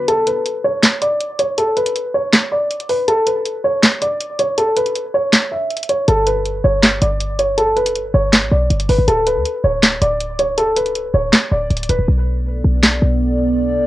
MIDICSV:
0, 0, Header, 1, 5, 480
1, 0, Start_track
1, 0, Key_signature, 2, "minor"
1, 0, Tempo, 375000
1, 102, Time_signature, 4, 2, 24, 8
1, 17750, End_track
2, 0, Start_track
2, 0, Title_t, "Grand piano"
2, 0, Program_c, 0, 0
2, 101, Note_on_c, 0, 69, 107
2, 315, Note_off_c, 0, 69, 0
2, 342, Note_on_c, 0, 71, 77
2, 793, Note_off_c, 0, 71, 0
2, 822, Note_on_c, 0, 73, 83
2, 1273, Note_off_c, 0, 73, 0
2, 1302, Note_on_c, 0, 74, 82
2, 1753, Note_off_c, 0, 74, 0
2, 1782, Note_on_c, 0, 73, 79
2, 1996, Note_off_c, 0, 73, 0
2, 2022, Note_on_c, 0, 69, 93
2, 2236, Note_off_c, 0, 69, 0
2, 2262, Note_on_c, 0, 71, 77
2, 2713, Note_off_c, 0, 71, 0
2, 2741, Note_on_c, 0, 73, 83
2, 3193, Note_off_c, 0, 73, 0
2, 3222, Note_on_c, 0, 74, 73
2, 3673, Note_off_c, 0, 74, 0
2, 3700, Note_on_c, 0, 71, 85
2, 3915, Note_off_c, 0, 71, 0
2, 3941, Note_on_c, 0, 69, 114
2, 4155, Note_off_c, 0, 69, 0
2, 4181, Note_on_c, 0, 71, 78
2, 4633, Note_off_c, 0, 71, 0
2, 4662, Note_on_c, 0, 73, 86
2, 5113, Note_off_c, 0, 73, 0
2, 5142, Note_on_c, 0, 74, 85
2, 5593, Note_off_c, 0, 74, 0
2, 5623, Note_on_c, 0, 73, 85
2, 5836, Note_off_c, 0, 73, 0
2, 5861, Note_on_c, 0, 69, 93
2, 6075, Note_off_c, 0, 69, 0
2, 6102, Note_on_c, 0, 71, 82
2, 6553, Note_off_c, 0, 71, 0
2, 6582, Note_on_c, 0, 73, 85
2, 7033, Note_off_c, 0, 73, 0
2, 7062, Note_on_c, 0, 76, 69
2, 7513, Note_off_c, 0, 76, 0
2, 7541, Note_on_c, 0, 73, 75
2, 7755, Note_off_c, 0, 73, 0
2, 7780, Note_on_c, 0, 69, 106
2, 7995, Note_off_c, 0, 69, 0
2, 8021, Note_on_c, 0, 71, 83
2, 8473, Note_off_c, 0, 71, 0
2, 8501, Note_on_c, 0, 73, 81
2, 8952, Note_off_c, 0, 73, 0
2, 8980, Note_on_c, 0, 74, 81
2, 9432, Note_off_c, 0, 74, 0
2, 9460, Note_on_c, 0, 73, 76
2, 9675, Note_off_c, 0, 73, 0
2, 9700, Note_on_c, 0, 69, 92
2, 9914, Note_off_c, 0, 69, 0
2, 9940, Note_on_c, 0, 71, 83
2, 10392, Note_off_c, 0, 71, 0
2, 10421, Note_on_c, 0, 73, 86
2, 10873, Note_off_c, 0, 73, 0
2, 10901, Note_on_c, 0, 74, 65
2, 11353, Note_off_c, 0, 74, 0
2, 11382, Note_on_c, 0, 71, 83
2, 11596, Note_off_c, 0, 71, 0
2, 11621, Note_on_c, 0, 69, 103
2, 11835, Note_off_c, 0, 69, 0
2, 11862, Note_on_c, 0, 71, 83
2, 12313, Note_off_c, 0, 71, 0
2, 12342, Note_on_c, 0, 73, 79
2, 12793, Note_off_c, 0, 73, 0
2, 12822, Note_on_c, 0, 74, 85
2, 13273, Note_off_c, 0, 74, 0
2, 13302, Note_on_c, 0, 73, 80
2, 13516, Note_off_c, 0, 73, 0
2, 13540, Note_on_c, 0, 69, 98
2, 13755, Note_off_c, 0, 69, 0
2, 13781, Note_on_c, 0, 71, 75
2, 14232, Note_off_c, 0, 71, 0
2, 14262, Note_on_c, 0, 73, 80
2, 14713, Note_off_c, 0, 73, 0
2, 14742, Note_on_c, 0, 74, 66
2, 15193, Note_off_c, 0, 74, 0
2, 15223, Note_on_c, 0, 71, 74
2, 15436, Note_off_c, 0, 71, 0
2, 17750, End_track
3, 0, Start_track
3, 0, Title_t, "Analog synth pad"
3, 0, Program_c, 1, 89
3, 15462, Note_on_c, 1, 59, 86
3, 15462, Note_on_c, 1, 69, 73
3, 15462, Note_on_c, 1, 74, 91
3, 17750, Note_off_c, 1, 59, 0
3, 17750, Note_off_c, 1, 69, 0
3, 17750, Note_off_c, 1, 74, 0
3, 17750, End_track
4, 0, Start_track
4, 0, Title_t, "808-style bass"
4, 0, Program_c, 2, 38
4, 7782, Note_on_c, 2, 31, 112
4, 8473, Note_off_c, 2, 31, 0
4, 8501, Note_on_c, 2, 31, 101
4, 8962, Note_off_c, 2, 31, 0
4, 8981, Note_on_c, 2, 31, 108
4, 9940, Note_on_c, 2, 30, 99
4, 9960, Note_off_c, 2, 31, 0
4, 10181, Note_on_c, 2, 31, 97
4, 10200, Note_off_c, 2, 30, 0
4, 10409, Note_off_c, 2, 31, 0
4, 10420, Note_on_c, 2, 31, 107
4, 10780, Note_on_c, 2, 33, 98
4, 10799, Note_off_c, 2, 31, 0
4, 10895, Note_off_c, 2, 33, 0
4, 10901, Note_on_c, 2, 35, 105
4, 11132, Note_off_c, 2, 35, 0
4, 11141, Note_on_c, 2, 31, 103
4, 11372, Note_off_c, 2, 31, 0
4, 11381, Note_on_c, 2, 31, 105
4, 11493, Note_off_c, 2, 31, 0
4, 11501, Note_on_c, 2, 31, 104
4, 11612, Note_off_c, 2, 31, 0
4, 11620, Note_on_c, 2, 26, 108
4, 11980, Note_on_c, 2, 38, 97
4, 11999, Note_off_c, 2, 26, 0
4, 12095, Note_off_c, 2, 38, 0
4, 12340, Note_on_c, 2, 26, 103
4, 12802, Note_off_c, 2, 26, 0
4, 12822, Note_on_c, 2, 26, 106
4, 13541, Note_on_c, 2, 25, 102
4, 13560, Note_off_c, 2, 26, 0
4, 14225, Note_off_c, 2, 25, 0
4, 14260, Note_on_c, 2, 26, 104
4, 14491, Note_off_c, 2, 26, 0
4, 14741, Note_on_c, 2, 26, 104
4, 14972, Note_off_c, 2, 26, 0
4, 14981, Note_on_c, 2, 26, 106
4, 15212, Note_off_c, 2, 26, 0
4, 15221, Note_on_c, 2, 26, 104
4, 15337, Note_off_c, 2, 26, 0
4, 15342, Note_on_c, 2, 26, 103
4, 15455, Note_off_c, 2, 26, 0
4, 15462, Note_on_c, 2, 35, 117
4, 16153, Note_off_c, 2, 35, 0
4, 16182, Note_on_c, 2, 35, 104
4, 16643, Note_off_c, 2, 35, 0
4, 16662, Note_on_c, 2, 35, 107
4, 17623, Note_on_c, 2, 33, 97
4, 17642, Note_off_c, 2, 35, 0
4, 17750, Note_off_c, 2, 33, 0
4, 17750, End_track
5, 0, Start_track
5, 0, Title_t, "Drums"
5, 102, Note_on_c, 9, 42, 76
5, 230, Note_off_c, 9, 42, 0
5, 342, Note_on_c, 9, 42, 78
5, 470, Note_off_c, 9, 42, 0
5, 583, Note_on_c, 9, 42, 60
5, 711, Note_off_c, 9, 42, 0
5, 1063, Note_on_c, 9, 38, 112
5, 1064, Note_on_c, 9, 42, 75
5, 1071, Note_on_c, 9, 39, 88
5, 1191, Note_off_c, 9, 38, 0
5, 1192, Note_off_c, 9, 42, 0
5, 1199, Note_off_c, 9, 39, 0
5, 1302, Note_on_c, 9, 42, 73
5, 1430, Note_off_c, 9, 42, 0
5, 1543, Note_on_c, 9, 42, 77
5, 1671, Note_off_c, 9, 42, 0
5, 1781, Note_on_c, 9, 42, 78
5, 1909, Note_off_c, 9, 42, 0
5, 2022, Note_on_c, 9, 42, 77
5, 2150, Note_off_c, 9, 42, 0
5, 2262, Note_on_c, 9, 42, 50
5, 2382, Note_off_c, 9, 42, 0
5, 2382, Note_on_c, 9, 42, 86
5, 2503, Note_off_c, 9, 42, 0
5, 2503, Note_on_c, 9, 42, 60
5, 2631, Note_off_c, 9, 42, 0
5, 2982, Note_on_c, 9, 38, 110
5, 2983, Note_on_c, 9, 42, 74
5, 2990, Note_on_c, 9, 39, 84
5, 3110, Note_off_c, 9, 38, 0
5, 3111, Note_off_c, 9, 42, 0
5, 3118, Note_off_c, 9, 39, 0
5, 3462, Note_on_c, 9, 42, 62
5, 3582, Note_off_c, 9, 42, 0
5, 3582, Note_on_c, 9, 42, 64
5, 3701, Note_on_c, 9, 46, 60
5, 3710, Note_off_c, 9, 42, 0
5, 3829, Note_off_c, 9, 46, 0
5, 3942, Note_on_c, 9, 42, 78
5, 4070, Note_off_c, 9, 42, 0
5, 4182, Note_on_c, 9, 42, 79
5, 4310, Note_off_c, 9, 42, 0
5, 4423, Note_on_c, 9, 42, 60
5, 4551, Note_off_c, 9, 42, 0
5, 4903, Note_on_c, 9, 38, 109
5, 4904, Note_on_c, 9, 42, 76
5, 4911, Note_on_c, 9, 39, 86
5, 5031, Note_off_c, 9, 38, 0
5, 5032, Note_off_c, 9, 42, 0
5, 5039, Note_off_c, 9, 39, 0
5, 5142, Note_on_c, 9, 42, 76
5, 5270, Note_off_c, 9, 42, 0
5, 5383, Note_on_c, 9, 42, 73
5, 5511, Note_off_c, 9, 42, 0
5, 5621, Note_on_c, 9, 42, 77
5, 5749, Note_off_c, 9, 42, 0
5, 5861, Note_on_c, 9, 42, 78
5, 5989, Note_off_c, 9, 42, 0
5, 6101, Note_on_c, 9, 42, 82
5, 6222, Note_off_c, 9, 42, 0
5, 6222, Note_on_c, 9, 42, 49
5, 6343, Note_off_c, 9, 42, 0
5, 6343, Note_on_c, 9, 42, 59
5, 6471, Note_off_c, 9, 42, 0
5, 6823, Note_on_c, 9, 38, 108
5, 6823, Note_on_c, 9, 42, 78
5, 6831, Note_on_c, 9, 39, 87
5, 6951, Note_off_c, 9, 38, 0
5, 6951, Note_off_c, 9, 42, 0
5, 6959, Note_off_c, 9, 39, 0
5, 7301, Note_on_c, 9, 42, 47
5, 7381, Note_off_c, 9, 42, 0
5, 7381, Note_on_c, 9, 42, 62
5, 7461, Note_off_c, 9, 42, 0
5, 7461, Note_on_c, 9, 42, 79
5, 7540, Note_off_c, 9, 42, 0
5, 7540, Note_on_c, 9, 42, 82
5, 7668, Note_off_c, 9, 42, 0
5, 7781, Note_on_c, 9, 42, 74
5, 7909, Note_off_c, 9, 42, 0
5, 8021, Note_on_c, 9, 42, 78
5, 8149, Note_off_c, 9, 42, 0
5, 8262, Note_on_c, 9, 42, 58
5, 8390, Note_off_c, 9, 42, 0
5, 8742, Note_on_c, 9, 38, 111
5, 8743, Note_on_c, 9, 42, 75
5, 8750, Note_on_c, 9, 39, 87
5, 8870, Note_off_c, 9, 38, 0
5, 8871, Note_off_c, 9, 42, 0
5, 8878, Note_off_c, 9, 39, 0
5, 8981, Note_on_c, 9, 42, 76
5, 9109, Note_off_c, 9, 42, 0
5, 9222, Note_on_c, 9, 42, 78
5, 9350, Note_off_c, 9, 42, 0
5, 9461, Note_on_c, 9, 42, 76
5, 9589, Note_off_c, 9, 42, 0
5, 9702, Note_on_c, 9, 42, 76
5, 9830, Note_off_c, 9, 42, 0
5, 9943, Note_on_c, 9, 42, 49
5, 10063, Note_off_c, 9, 42, 0
5, 10063, Note_on_c, 9, 42, 88
5, 10183, Note_off_c, 9, 42, 0
5, 10183, Note_on_c, 9, 42, 60
5, 10311, Note_off_c, 9, 42, 0
5, 10663, Note_on_c, 9, 38, 108
5, 10663, Note_on_c, 9, 42, 74
5, 10671, Note_on_c, 9, 39, 88
5, 10791, Note_off_c, 9, 38, 0
5, 10791, Note_off_c, 9, 42, 0
5, 10799, Note_off_c, 9, 39, 0
5, 11142, Note_on_c, 9, 42, 65
5, 11262, Note_off_c, 9, 42, 0
5, 11262, Note_on_c, 9, 42, 63
5, 11382, Note_on_c, 9, 46, 61
5, 11390, Note_off_c, 9, 42, 0
5, 11510, Note_off_c, 9, 46, 0
5, 11622, Note_on_c, 9, 42, 79
5, 11750, Note_off_c, 9, 42, 0
5, 11863, Note_on_c, 9, 42, 80
5, 11991, Note_off_c, 9, 42, 0
5, 12104, Note_on_c, 9, 42, 59
5, 12232, Note_off_c, 9, 42, 0
5, 12583, Note_on_c, 9, 38, 110
5, 12583, Note_on_c, 9, 42, 76
5, 12591, Note_on_c, 9, 39, 88
5, 12711, Note_off_c, 9, 38, 0
5, 12711, Note_off_c, 9, 42, 0
5, 12719, Note_off_c, 9, 39, 0
5, 12822, Note_on_c, 9, 42, 79
5, 12950, Note_off_c, 9, 42, 0
5, 13063, Note_on_c, 9, 42, 75
5, 13191, Note_off_c, 9, 42, 0
5, 13300, Note_on_c, 9, 42, 78
5, 13428, Note_off_c, 9, 42, 0
5, 13541, Note_on_c, 9, 42, 77
5, 13669, Note_off_c, 9, 42, 0
5, 13780, Note_on_c, 9, 42, 81
5, 13901, Note_off_c, 9, 42, 0
5, 13901, Note_on_c, 9, 42, 49
5, 14022, Note_off_c, 9, 42, 0
5, 14022, Note_on_c, 9, 42, 60
5, 14150, Note_off_c, 9, 42, 0
5, 14502, Note_on_c, 9, 38, 115
5, 14503, Note_on_c, 9, 42, 77
5, 14510, Note_on_c, 9, 39, 86
5, 14630, Note_off_c, 9, 38, 0
5, 14631, Note_off_c, 9, 42, 0
5, 14638, Note_off_c, 9, 39, 0
5, 14982, Note_on_c, 9, 42, 46
5, 15062, Note_off_c, 9, 42, 0
5, 15062, Note_on_c, 9, 42, 64
5, 15143, Note_off_c, 9, 42, 0
5, 15143, Note_on_c, 9, 42, 78
5, 15222, Note_off_c, 9, 42, 0
5, 15222, Note_on_c, 9, 42, 81
5, 15350, Note_off_c, 9, 42, 0
5, 16422, Note_on_c, 9, 38, 108
5, 16430, Note_on_c, 9, 39, 90
5, 16550, Note_off_c, 9, 38, 0
5, 16558, Note_off_c, 9, 39, 0
5, 17750, End_track
0, 0, End_of_file